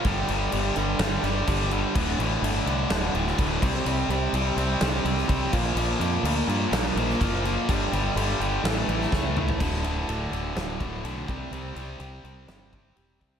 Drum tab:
CC |x-x-x-x-x-x-x-x-|x-x-x-x-x-x-x-x-|x-x-x-x-x-x-x-x-|x-x-x-x-x-x-x-x-|
RD |----------------|----------------|----------------|----------------|
SD |--------o-------|--------o--o----|--------o--o----|--------o--o----|
T2 |----------------|----------------|----------------|----------------|
FT |----------------|----------------|----------------|----------------|
BD |o-----------o---|o-----------o-o-|------------o-o-|------------o---|

CC |x-x-x-x-x-x-----|x---------------|----------------|
RD |----------------|--x-x-x-x-x-x-x-|x-x-x-x-x-x-x-x-|
SD |--------o--oo---|-o------o-------|--------o-------|
T2 |--------------o-|----------------|----------------|
FT |---------------o|----------------|----------------|
BD |o-----------o---|o---------o---o-|----------o---o-|